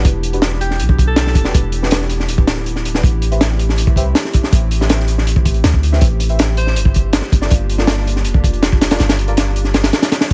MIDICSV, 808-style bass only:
0, 0, Header, 1, 2, 480
1, 0, Start_track
1, 0, Tempo, 372671
1, 68, Time_signature, 4, 2, 24, 8
1, 13310, End_track
2, 0, Start_track
2, 0, Title_t, "808-style bass"
2, 0, Program_c, 0, 38
2, 64, Note_on_c, 0, 28, 102
2, 1027, Note_on_c, 0, 35, 91
2, 1047, Note_off_c, 0, 28, 0
2, 1741, Note_on_c, 0, 28, 85
2, 1761, Note_off_c, 0, 35, 0
2, 1961, Note_off_c, 0, 28, 0
2, 1991, Note_on_c, 0, 28, 104
2, 2948, Note_on_c, 0, 26, 93
2, 2967, Note_off_c, 0, 28, 0
2, 3889, Note_off_c, 0, 26, 0
2, 3908, Note_on_c, 0, 33, 102
2, 5101, Note_on_c, 0, 36, 89
2, 5120, Note_off_c, 0, 33, 0
2, 5321, Note_off_c, 0, 36, 0
2, 5827, Note_on_c, 0, 33, 102
2, 7249, Note_off_c, 0, 33, 0
2, 7269, Note_on_c, 0, 38, 94
2, 7729, Note_off_c, 0, 38, 0
2, 7749, Note_on_c, 0, 33, 102
2, 8707, Note_on_c, 0, 31, 94
2, 8726, Note_off_c, 0, 33, 0
2, 9290, Note_off_c, 0, 31, 0
2, 9432, Note_on_c, 0, 31, 86
2, 9646, Note_off_c, 0, 31, 0
2, 9676, Note_on_c, 0, 31, 103
2, 10628, Note_on_c, 0, 29, 93
2, 10648, Note_off_c, 0, 31, 0
2, 11569, Note_off_c, 0, 29, 0
2, 11592, Note_on_c, 0, 31, 101
2, 12771, Note_off_c, 0, 31, 0
2, 13310, End_track
0, 0, End_of_file